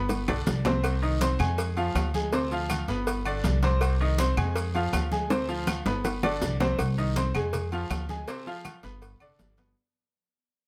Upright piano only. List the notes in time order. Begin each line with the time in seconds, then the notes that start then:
Already playing: B3 B4 B5
0.28 D3 D4 D5
0.65 C3 C4 C5
1.02 D#3 D#4 D#5
1.21 C4 C5 C6
1.40 G#3 G#4 G#5
1.77 F3 F4 F5
2.15 G#3 G#4 G#5
2.33 C3 C4 C5
2.52 F3 F4 F5
2.89 B3 B4 B5
3.26 D3 D4 D5
3.63 C3 C4 C5
4.01 D#3 D#4 D#5
4.19 C4 C5 C6
4.37 G#3 G#4 G#5
4.75 F3 F4 F5
5.12 G#3 G#4 G#5
5.30 C3 C4 C5
5.48 F3 F4 F5
5.86 B3 B4 B5
6.23 D3 D4 D5
6.60 C3 C4 C5
6.98 D#3 D#4 D#5
7.17 C4 C5 C6
7.35 G#3 G#4 G#5
7.72 F3 F4 F5
8.09 G#3 G#4 G#5
8.28 C3 C4 C5
8.47 F3 F4 F5
8.84 B3 B4 B5
9.21 D3 D4 D5
9.58 B2 B3 B4